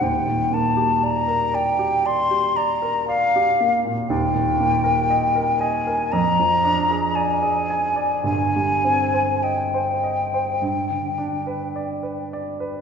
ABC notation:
X:1
M:4/4
L:1/16
Q:1/4=58
K:Eblyd
V:1 name="Flute"
g2 a2 b2 g2 c'2 b2 f2 z2 | [K:Cm] g6 a2 b4 a4 | a4 g8- g2 z2 |]
V:2 name="Grand piano"
[E,,,E,,] B,, B, G d B d G d G d B d G B, B,, | [K:Cm] [E,,,E,,] B,, B, B e B e B F,, F, D A d A a d | [G,,,G,,] G, C c e c e c G,, D, D =B d B d B |]